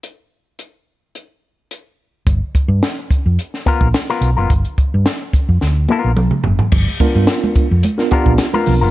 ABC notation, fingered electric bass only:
X:1
M:4/4
L:1/16
Q:1/4=108
K:C
V:1 name="Fingered electric bass" clef=bass
z16 | G,,, z2 G,, z3 F,, z3 ^A,,, z2 B,,, ^F,,, | G,,, z2 G,, z3 F,, D,,2 z ^A,,, B,,, z ^F,,, z | G,,, z2 G,, z3 F,, z3 ^A,,, z2 B,,, ^F,,, |]